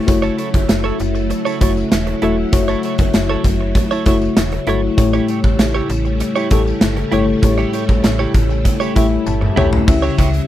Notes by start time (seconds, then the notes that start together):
Already playing: C#3 A3 E4 C5 C#5
0.07 F#1 F#3 A3 E4 F#4 C#5, muted clean electric guitar stroke, kick, closed hi-hat, tambourine
0.22 E4 A4 C#5, tambourine
0.37 E4 A4 C#5, closed hi-hat, tambourine
0.54 F#1, muted clean electric guitar stroke, kick, closed hi-hat
0.69 F#1, muted clean electric guitar stroke, snare, closed hi-hat, tambourine
0.84 E4 A4 C#5
0.99 F#1, muted clean electric guitar stroke, closed hi-hat, tambourine
1.15 muted clean electric guitar stroke, tambourine
1.30 muted clean electric guitar stroke, closed hi-hat, tambourine
1.45 E4 A4 C#5, tambourine
1.61 F#1 A3 E4 F#4 A4 C#5, kick, closed hi-hat, tambourine
1.76 muted clean electric guitar stroke, tambourine
1.92 E1, snare, closed hi-hat, tambourine
2.07 muted clean electric guitar stroke, closed hi-hat
2.22 E1 A3 E4 F#4 A4 C#5 E5, closed hi-hat
2.38 muted clean electric guitar stroke
2.52 F#1 A3 E4 F#4 C#5, muted clean electric guitar stroke, kick, closed hi-hat, tambourine
2.68 E4 A4 C#5, tambourine
2.83 E4 A4 C#5, closed hi-hat, tambourine
2.98 F#1, muted clean electric guitar stroke, kick, closed hi-hat, tambourine
3.14 F#1, muted clean electric guitar stroke, snare, closed hi-hat, tambourine
3.29 E4 A4 C#5
3.44 F#1, kick, closed hi-hat, tambourine
3.61 muted clean electric guitar stroke
3.75 muted clean electric guitar stroke, kick, closed hi-hat, tambourine
3.91 E4 A4 C#5, tambourine
4.06 F#1 A3 E4 F#4 A4 C#5, kick, closed hi-hat, tambourine
4.21 muted clean electric guitar stroke, tambourine
4.37 E1, snare, closed hi-hat, tambourine
4.52 muted clean electric guitar stroke, closed hi-hat
4.67 G1 A3 E4 F#4 A4 C#5, closed hi-hat
4.97 A1 A2 C#3 G3 A3 E4 G4 C#5, muted clean electric guitar stroke, kick, closed hi-hat, tambourine
5.13 E4 G4 C#5, tambourine
5.28 E4 G4 C#5, closed hi-hat, tambourine
5.44 A1, muted clean electric guitar stroke, kick
5.59 A1, muted clean electric guitar stroke, snare, closed hi-hat, tambourine
5.75 E4 G4 C#5
5.90 A1, muted clean electric guitar stroke, closed hi-hat, tambourine
6.05 muted clean electric guitar stroke, tambourine
6.20 muted clean electric guitar stroke, closed hi-hat, tambourine
6.36 E4 G4 C#5, tambourine
6.51 A1 A3 E4 G4 A4 C#5, kick, closed hi-hat, tambourine
6.66 muted clean electric guitar stroke, tambourine
6.81 G1, snare, closed hi-hat, tambourine
6.97 muted clean electric guitar stroke, closed hi-hat
7.12 G1 A3 E4 G4 C#5, closed hi-hat
7.27 muted clean electric guitar stroke
7.42 A1 A2 A3 E4 G4 C#5, muted clean electric guitar stroke, kick, closed hi-hat, tambourine
7.58 E4 G4 C#5, tambourine
7.73 E4 G4 C#5, closed hi-hat, tambourine
7.88 A1, muted clean electric guitar stroke, kick, tambourine
8.03 A1, muted clean electric guitar stroke, snare, closed hi-hat, tambourine
8.19 E4 G4 C#5
8.34 A1, muted clean electric guitar stroke, kick, closed hi-hat, tambourine
8.49 muted clean electric guitar stroke, tambourine
8.65 muted clean electric guitar stroke, kick, closed hi-hat, tambourine
8.80 E4 G4 C#5, tambourine
8.95 A1 A3 E4 G4 C#5 E5 B5, kick, closed hi-hat, tambourine
9.10 muted clean electric guitar stroke
9.26 G1 A5, high tom, tambourine
9.41 muted clean electric guitar stroke, mid tom
9.56 B1 A3 E4 G4 C#5 E5, mid tom
9.73 floor tom
9.87 C#2 C#3 E3 G3 C#4 E4 G4 E5, muted clean electric guitar stroke, kick, crash, tambourine
10.02 E4 G4 C#5, tambourine
10.18 C#2 E4 G4 C#5, kick, closed hi-hat, tambourine
10.33 muted clean electric guitar stroke, closed hi-hat, tambourine